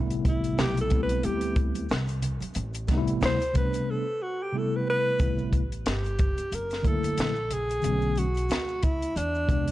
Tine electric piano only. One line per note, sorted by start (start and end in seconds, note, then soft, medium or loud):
0.00 0.85 C3 medium
0.00 0.85 G3 medium
0.00 0.86 A3 medium
0.00 0.86 B3 medium
0.00 0.90 E4 medium
0.90 1.84 G3 medium
0.90 1.85 A3 medium
0.90 1.85 B3 medium
0.90 1.84 C4 medium
0.90 1.86 E4 medium
2.88 3.37 C3 medium
2.88 3.37 G3 medium
2.88 3.37 A3 medium
2.88 3.38 B3 medium
2.88 2.98 D#4 medium
2.98 3.42 E4 loud
3.54 4.03 C3 medium
3.54 4.03 G3 medium
3.54 4.03 A3 medium
3.54 4.04 B3 medium
3.54 4.05 D4 medium
4.53 5.18 C3 medium
4.53 5.18 G3 medium
4.53 5.19 A3 medium
4.53 5.20 B3 medium
4.53 5.21 E4 medium
5.19 5.60 C3 medium
5.19 5.60 G3 medium
5.19 5.61 A3 medium
5.19 5.61 B3 medium
5.19 5.62 E4 medium
6.82 7.32 D3 medium
6.82 7.32 F#3 medium
6.82 7.33 A3 medium
6.82 7.33 A#3 medium
6.82 7.34 E4 medium
7.82 8.23 D3 medium
7.82 8.24 F#3 medium
7.82 8.24 A3 medium
7.82 8.25 B3 medium
7.82 8.25 C#4 medium
9.47 9.71 C3 medium
9.47 9.71 E3 medium
9.47 9.71 G#3 medium
9.47 9.71 B3 medium
9.52 9.71 D4 medium